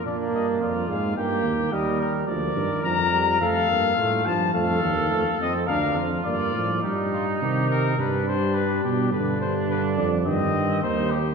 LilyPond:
<<
  \new Staff \with { instrumentName = "Trumpet" } { \time 4/4 \key bes \mixolydian \tempo 4 = 106 d''8 ees''8 d''8 f''8 g''4 ees''8 bes'8 | bes'4 bes''4 f''4. a''8 | f''4. ees''8 f''8 r8 d''4 | \key c \minor g'8 f'8 g'8 bes'8 b'8 c''8 b'8 g'8 |
b'8 c''8 b'8 d''8 ees''4 c''8 g'8 | }
  \new Staff \with { instrumentName = "Trumpet" } { \time 4/4 \key bes \mixolydian d'4 f'4 g'4 bes'4 | d''4 bes'4 a'4 f'8 r8 | a'2 bes'8 f'4. | \key c \minor ees'2 d'2 |
d'2 c'4 ees'4 | }
  \new Staff \with { instrumentName = "Trombone" } { \clef bass \time 4/4 \key bes \mixolydian bes4. aes8 bes4 g4 | f8 ees8 f8 g8 a8 bes8 a8 f8 | a8 bes8 a8 c'8 d'8 r8 bes8 f8 | \key c \minor g4 ees4 g2 |
d4 d4 ees2 | }
  \new Staff \with { instrumentName = "Tuba" } { \clef bass \time 4/4 \key bes \mixolydian bes,8 g,8 f,8 aes,8 g,8 ees,8 ees,4 | d,8 g,8 f,4 f,8 g,8 a,8 g,8 | f,8 ees,8 f,8 f,8 d,8 f,8 g,8 a,8 | \key c \minor g,4 c4 g,4. b,8 |
g,4. f,8 g,4 ees,4 | }
>>